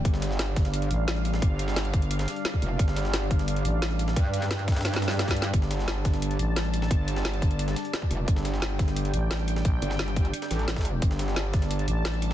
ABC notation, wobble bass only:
X:1
M:4/4
L:1/8
Q:1/4=175
K:Cdor
V:1 name="Wobble bass" clef=bass
G,,,4- G,,, z3 | G,,,4- G,,, z2 F,,, | G,,,4- G,,, z3 | G,,8 |
G,,,4- G,,, z3 | G,,,4- G,,, z2 F,,, | G,,,4- G,,, z3 | z G,,,3 z A,,,3 |
G,,,4- G,,, z3 |]